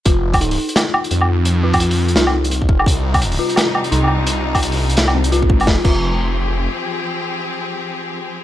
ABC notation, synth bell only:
X:1
M:4/4
L:1/8
Q:"Swing 16ths" 1/4=171
K:Fdor
V:1 name="Synth bell"
F z E z4 z | z F F z E z3 | z3 F F z E z | z4 z C F z |
F F z6 | z8 |]